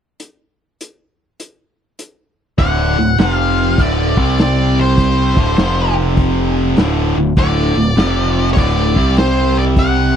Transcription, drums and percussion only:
0.20 closed hi-hat
0.81 closed hi-hat
1.40 closed hi-hat
1.99 closed hi-hat
2.58 kick, open hi-hat
3.18 snare, open hi-hat
3.78 kick, open hi-hat
4.17 kick
4.38 snare, open hi-hat
4.98 kick, open hi-hat
5.37 kick
5.57 snare, open hi-hat
6.17 kick, open hi-hat
6.77 snare, open hi-hat
7.37 kick, open hi-hat
7.97 snare, open hi-hat
8.57 kick, open hi-hat
8.96 kick
9.17 snare, open hi-hat
9.76 kick, open hi-hat

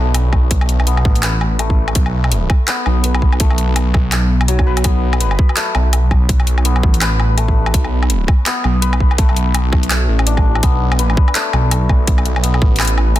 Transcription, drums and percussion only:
0.14 closed hi-hat, low woodblock
0.33 kick, low woodblock
0.51 kick, closed hi-hat
0.61 low woodblock
0.69 closed hi-hat
0.80 low woodblock
0.87 closed hi-hat
0.97 low woodblock
1.05 kick
1.16 closed hi-hat
1.23 clap, closed hi-hat, low woodblock
1.41 low woodblock
1.59 closed hi-hat, low woodblock
1.70 kick
1.88 low woodblock
1.95 kick, closed hi-hat
2.06 low woodblock
2.24 low woodblock
2.32 closed hi-hat
2.50 kick, low woodblock
2.68 clap, closed hi-hat, low woodblock
2.86 low woodblock
3.04 closed hi-hat
3.15 low woodblock
3.22 kick
3.33 low woodblock
3.40 kick, closed hi-hat
3.51 low woodblock
3.58 closed hi-hat
3.76 closed hi-hat, low woodblock
3.94 kick, low woodblock
4.12 clap, closed hi-hat, low woodblock
4.41 low woodblock
4.48 closed hi-hat
4.59 kick, low woodblock
4.77 closed hi-hat, low woodblock
4.84 kick, closed hi-hat, low woodblock
5.13 low woodblock
5.21 closed hi-hat
5.31 low woodblock
5.39 kick
5.49 low woodblock
5.57 clap, closed hi-hat
5.75 low woodblock
5.93 closed hi-hat, low woodblock
6.11 kick, low woodblock
6.29 kick, closed hi-hat
6.40 low woodblock
6.47 closed hi-hat
6.58 low woodblock
6.65 closed hi-hat
6.76 low woodblock
6.83 kick
6.94 closed hi-hat
7.01 clap, closed hi-hat, low woodblock
7.20 low woodblock
7.38 closed hi-hat, low woodblock
7.48 kick
7.66 low woodblock
7.74 kick, closed hi-hat
7.84 low woodblock
8.03 low woodblock
8.10 closed hi-hat
8.28 kick, low woodblock
8.46 clap, closed hi-hat, low woodblock
8.64 low woodblock
8.82 closed hi-hat
8.93 low woodblock
9.00 kick
9.11 low woodblock
9.18 kick, closed hi-hat
9.29 low woodblock
9.37 closed hi-hat
9.55 closed hi-hat, low woodblock
9.72 kick, low woodblock
9.83 closed hi-hat
9.90 clap, closed hi-hat, low woodblock
10.19 low woodblock
10.27 closed hi-hat
10.37 kick, low woodblock
10.55 low woodblock
10.63 kick, closed hi-hat, low woodblock
10.92 low woodblock
10.99 closed hi-hat
11.10 low woodblock
11.17 kick
11.28 low woodblock
11.35 clap, closed hi-hat
11.53 low woodblock
11.71 closed hi-hat, low woodblock
11.89 kick, low woodblock
12.07 kick, closed hi-hat
12.18 low woodblock
12.25 closed hi-hat
12.36 low woodblock
12.44 closed hi-hat
12.54 low woodblock
12.62 kick
12.76 clap, closed hi-hat
12.80 closed hi-hat, low woodblock
12.82 closed hi-hat
12.85 closed hi-hat
12.87 closed hi-hat
12.98 low woodblock
13.16 closed hi-hat, low woodblock

